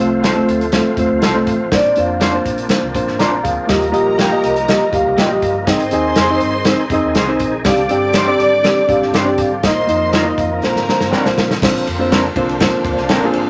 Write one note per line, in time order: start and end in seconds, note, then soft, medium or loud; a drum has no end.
0.00 0.39 C2 medium
0.00 3.65 F3 medium
0.00 0.23 A3 medium
0.00 1.70 A3 medium
0.00 0.23 C4 medium
0.00 3.66 C4 medium
0.00 0.23 F4 medium
0.00 1.70 F4 medium
0.00 0.24 C5 medium
0.23 0.33 F4 medium
0.23 0.33 A4 medium
0.23 0.49 C5 medium
0.23 0.34 C5 medium
0.23 snare loud
0.23 closed hi-hat loud
0.35 0.60 A3 medium
0.35 0.60 C4 medium
0.35 0.60 F4 medium
0.35 0.61 C5 medium
0.48 0.78 D2 medium
0.48 0.72 A4 medium
0.48 closed hi-hat medium
0.61 closed hi-hat medium
0.72 0.89 A3 medium
0.72 0.90 C4 medium
0.72 0.90 F4 medium
0.72 0.85 A4 medium
0.72 0.90 C5 medium
0.72 snare loud
0.72 closed hi-hat medium
0.97 1.08 D#2 medium
0.97 1.22 A3 medium
0.97 1.22 C4 medium
0.97 1.22 F4 medium
0.97 1.23 C5 medium
0.97 1.10 C5 medium
0.97 kick loud
0.97 closed hi-hat medium
1.11 1.21 D2 medium
1.22 1.42 C2 medium
1.22 1.32 F4 medium
1.22 1.32 A4 loud
1.22 1.49 A4 medium
1.22 1.33 C5 loud
1.22 snare loud
1.22 closed hi-hat medium
1.34 1.59 A3 medium
1.34 1.59 C4 medium
1.34 1.59 F4 medium
1.34 1.59 C5 medium
1.47 1.67 A1 medium
1.47 1.73 C5 medium
1.47 kick medium
1.47 closed hi-hat medium
1.72 1.92 A#1 loud
1.72 1.88 A#3 medium
1.72 3.68 A#3 medium
1.72 3.68 D4 medium
1.72 1.88 D4 medium
1.72 1.88 F4 medium
1.72 1.89 C5 medium
1.72 1.98 D5 loud
1.72 kick loud
1.72 snare loud
1.72 closed hi-hat medium
1.84 closed hi-hat soft
1.96 2.37 F2 medium
1.96 2.21 A#3 medium
1.96 2.21 D4 medium
1.96 2.21 F4 medium
1.96 2.22 C5 medium
1.96 2.44 F5 loud
1.96 closed hi-hat medium
2.20 2.30 D4 medium
2.20 2.31 F4 medium
2.20 2.31 C5 medium
2.20 snare loud
2.20 closed hi-hat loud
2.34 2.58 A#3 medium
2.34 2.58 D4 medium
2.34 2.59 F4 medium
2.34 2.59 C5 medium
2.46 2.66 A#1 medium
2.46 kick medium
2.46 closed hi-hat medium
2.58 closed hi-hat medium
2.68 2.86 A#3 medium
2.68 2.86 D4 medium
2.68 2.87 F4 medium
2.68 2.87 C5 medium
2.68 snare loud
2.68 closed hi-hat medium
2.83 2.93 C2 medium
2.94 3.05 A#1 medium
2.94 3.19 A#3 medium
2.94 3.19 D4 medium
2.94 3.20 F4 medium
2.94 3.20 C5 medium
2.94 kick medium
2.94 closed hi-hat medium
3.08 3.18 G#1 medium
3.08 snare soft
3.19 3.40 A#1 medium
3.19 3.29 D4 medium
3.19 3.30 F4 medium
3.19 3.30 C5 medium
3.19 3.44 D5 medium
3.19 3.43 A#5 medium
3.19 snare medium
3.19 closed hi-hat medium
3.43 3.55 D2 medium
3.43 3.91 G#4 medium
3.43 3.91 F5 medium
3.43 kick medium
3.43 closed hi-hat medium
3.67 3.90 D#2 loud
3.67 5.66 F3 medium
3.67 5.65 G3 medium
3.67 3.85 A#3 medium
3.67 5.66 A#3 medium
3.67 5.65 D#4 medium
3.67 3.85 F4 medium
3.67 3.85 G4 medium
3.67 5.39 A#4 medium
3.67 3.86 D#5 medium
3.67 5.39 A#5 loud
3.67 kick loud
3.67 snare loud
3.67 closed hi-hat medium
3.82 closed hi-hat soft
3.92 4.35 A#1 medium
3.92 4.17 A#3 medium
3.92 4.18 F4 medium
3.92 4.18 G4 medium
3.92 4.18 D#5 medium
3.92 closed hi-hat medium
4.18 4.28 A#3 medium
4.18 4.29 F4 medium
4.18 4.29 G4 medium
4.18 4.44 F5 medium
4.18 snare loud
4.18 closed hi-hat loud
4.31 4.56 A#3 medium
4.31 4.56 F4 medium
4.31 4.56 G4 medium
4.31 4.56 D#5 medium
4.44 4.75 C2 medium
4.44 4.67 D#5 medium
4.44 closed hi-hat medium
4.56 closed hi-hat medium
4.68 4.85 A#3 medium
4.68 4.85 F4 medium
4.68 4.85 G4 medium
4.68 4.94 D#5 medium
4.68 4.85 D#5 medium
4.68 snare loud
4.68 closed hi-hat medium
4.92 5.03 D2 medium
4.92 5.17 A#3 medium
4.92 5.17 F4 medium
4.92 5.18 G4 medium
4.92 5.16 F5 medium
4.92 5.18 F5 medium
4.92 kick loud
4.92 closed hi-hat medium
5.06 5.16 C2 medium
5.17 5.38 A#1 medium
5.17 5.27 A#3 medium
5.17 5.28 F4 medium
5.17 5.28 G4 medium
5.17 5.40 D#5 medium
5.17 snare loud
5.17 closed hi-hat medium
5.30 5.55 A#3 medium
5.30 5.55 F4 medium
5.30 5.55 G4 medium
5.30 5.55 D#5 medium
5.42 5.63 G1 medium
5.42 5.68 F5 medium
5.42 kick medium
5.42 closed hi-hat medium
5.66 5.88 G#1 loud
5.66 7.63 D#3 medium
5.66 9.59 C4 medium
5.66 5.84 C4 medium
5.66 7.63 D#4 medium
5.66 5.84 D#4 medium
5.66 7.63 G#4 medium
5.66 5.85 G#4 medium
5.66 7.37 C5 loud
5.66 5.85 D#5 medium
5.66 5.93 G5 loud
5.66 7.37 C6 loud
5.66 kick loud
5.66 snare loud
5.66 closed hi-hat medium
5.80 closed hi-hat medium
5.91 6.12 D#2 medium
5.91 6.16 C4 medium
5.91 6.17 D#4 medium
5.91 6.17 G#4 medium
5.91 6.17 D#5 medium
5.91 6.39 G#5 loud
5.91 closed hi-hat medium
6.16 6.37 F2 loud
6.16 6.26 D#4 medium
6.16 6.27 G#4 medium
6.16 6.27 C5 medium
6.16 snare loud
6.16 closed hi-hat loud
6.29 6.53 C4 medium
6.29 6.54 D#4 medium
6.29 6.54 G#4 medium
6.29 6.55 D#5 medium
6.40 6.72 G2 medium
6.40 closed hi-hat medium
6.65 6.83 C4 medium
6.65 6.83 D#4 medium
6.65 6.83 G#4 medium
6.65 6.83 C5 medium
6.65 snare loud
6.65 closed hi-hat medium
6.90 7.01 F2 medium
6.90 7.16 C4 medium
6.90 7.16 D#4 medium
6.90 7.16 G#4 medium
6.90 7.17 D#5 loud
6.90 kick loud
6.90 closed hi-hat medium
7.04 7.14 D#2 medium
7.15 7.36 C2 medium
7.15 7.25 D#4 medium
7.15 7.26 G#4 medium
7.15 7.26 C5 medium
7.15 snare loud
7.15 closed hi-hat medium
7.27 7.52 C4 medium
7.27 7.52 D#4 medium
7.27 7.53 G#4 medium
7.27 7.53 C5 loud
7.39 7.61 A#1 medium
7.39 kick medium
7.39 closed hi-hat medium
7.65 7.86 C2 loud
7.65 9.62 D3 medium
7.65 9.62 G3 medium
7.65 7.81 C4 medium
7.65 7.81 D4 medium
7.65 9.62 D4 medium
7.65 7.82 G4 medium
7.65 9.35 D5 loud
7.65 7.82 D5 medium
7.65 7.92 F5 loud
7.65 9.35 D6 loud
7.65 kick loud
7.65 snare loud
7.65 closed hi-hat medium
7.77 closed hi-hat medium
7.89 8.31 G1 medium
7.89 8.14 C4 medium
7.89 8.14 D4 medium
7.89 8.15 G4 medium
7.89 8.15 D5 medium
7.89 8.37 G5 loud
7.89 closed hi-hat medium
8.13 8.24 D4 medium
8.13 8.25 G4 medium
8.13 8.25 C5 loud
8.13 snare loud
8.13 closed hi-hat loud
8.26 8.51 C4 medium
8.26 8.52 D4 medium
8.26 8.52 G4 medium
8.26 8.52 D5 medium
8.40 8.70 G#1 medium
8.40 8.91 D5 medium
8.40 closed hi-hat medium
8.63 8.80 C4 medium
8.63 8.80 D4 medium
8.63 8.80 G4 medium
8.63 8.80 D5 medium
8.63 snare loud
8.63 closed hi-hat medium
8.87 8.99 A#1 medium
8.87 9.13 C4 medium
8.87 9.13 D4 medium
8.87 9.13 G4 medium
8.87 9.14 D5 medium
8.87 9.15 F5 loud
8.87 kick loud
8.87 closed hi-hat medium
9.02 9.12 G#1 medium
9.02 snare soft
9.13 9.34 G1 medium
9.13 9.23 D4 medium
9.13 9.24 G4 medium
9.13 9.24 C5 medium
9.13 9.40 G5 loud
9.13 snare loud
9.13 closed hi-hat loud
9.24 9.50 C4 medium
9.24 9.50 D4 medium
9.24 9.50 G4 medium
9.24 9.51 D5 medium
9.38 9.59 G#1 medium
9.38 9.65 F5 medium
9.38 kick loud
9.38 closed hi-hat medium
9.63 9.84 A#1 loud
9.63 10.62 D#3 medium
9.63 11.60 F3 medium
9.63 9.79 A#3 medium
9.63 11.59 A#3 medium
9.63 9.80 D#4 medium
9.63 10.62 D#4 medium
9.63 9.80 F4 medium
9.63 10.37 C5 medium
9.63 10.40 D#5 medium
9.63 9.80 D#5 medium
9.63 10.36 C6 loud
9.63 kick loud
9.63 snare loud
9.63 closed hi-hat medium
9.87 10.29 F2 medium
9.87 10.12 A#3 medium
9.87 10.12 D#4 medium
9.87 10.13 F4 medium
9.87 10.13 D#5 medium
9.87 closed hi-hat medium
10.13 10.22 D#4 medium
10.13 10.23 F4 loud
10.13 10.23 A#4 medium
10.13 snare loud
10.13 closed hi-hat loud
10.24 10.49 A#3 medium
10.24 10.50 D#4 medium
10.24 10.50 F4 medium
10.24 10.50 D#5 medium
10.38 10.58 F2 medium
10.38 10.84 F5 medium
10.38 kick medium
10.38 closed hi-hat medium
10.60 10.73 A#1 loud
10.60 10.79 A#3 medium
10.60 10.79 D4 medium
10.60 10.79 F4 medium
10.60 11.35 A#4 medium
10.60 10.79 C5 medium
10.60 11.34 A#5 loud
10.60 snare medium
10.65 11.61 D3 medium
10.65 11.61 C4 medium
10.75 10.85 G#1 medium
10.75 snare medium
10.89 11.13 A#3 medium
10.89 11.13 D4 medium
10.89 11.13 F4 medium
10.89 11.13 C5 medium
10.89 snare medium
11.00 11.10 G1 medium
11.00 snare medium
11.11 11.21 C4 loud
11.11 11.21 D4 loud
11.11 11.22 A#4 loud
11.11 muted fingered electric bass stroke soft
11.11 snare medium
11.25 11.35 A#1 loud
11.25 11.49 A#3 loud
11.25 11.49 D4 medium
11.25 11.49 F4 medium
11.25 11.50 C5 medium
11.25 snare medium
11.38 11.58 A#2 loud
11.38 snare loud
11.51 snare medium
11.61 11.82 A#1 loud
11.61 13.50 D3 medium
11.61 13.50 F3 medium
11.61 11.86 A#3 medium
11.61 13.50 A#3 medium
11.61 13.50 C4 medium
11.61 11.86 C4 medium
11.61 13.50 D4 medium
11.61 11.87 D4 medium
11.61 11.87 F4 medium
11.61 13.50 C5 medium
11.61 11.87 C5 medium
11.61 13.50 F5 medium
11.61 kick loud
11.61 snare loud
11.61 crash loud
11.87 12.27 F2 medium
11.87 ride medium
11.99 12.23 A#3 medium
11.99 12.23 C4 medium
11.99 12.23 D4 medium
11.99 12.23 F4 medium
11.99 12.24 C5 medium
12.10 12.20 C4 medium
12.10 12.21 D4 medium
12.10 12.21 A#4 loud
12.10 snare loud
12.10 ride medium
12.36 12.66 C2 loud
12.36 12.52 A#3 medium
12.36 12.52 C4 medium
12.36 12.52 D4 medium
12.36 12.52 F4 medium
12.36 12.53 C5 loud
12.36 kick medium
12.36 ride medium
12.49 ride soft
12.60 13.01 A#3 medium
12.60 13.01 C4 medium
12.60 12.67 C#4 medium
12.60 13.02 F4 medium
12.60 13.02 C5 medium
12.60 kick loud
12.60 snare loud
12.60 ride medium
12.68 13.04 D4 medium
12.85 12.95 D2 medium
12.85 kick loud
12.85 ride medium
12.98 13.08 C2 medium
12.98 snare soft
13.09 13.35 A#1 medium
13.09 13.19 C4 medium
13.09 13.19 D4 medium
13.09 13.20 A#4 loud
13.09 snare loud
13.09 ride medium
13.23 13.47 A#3 medium
13.23 13.47 C4 medium
13.23 13.47 D4 medium
13.23 13.48 F4 medium
13.23 13.48 G#4 medium
13.33 13.50 G#1 medium
13.33 ride medium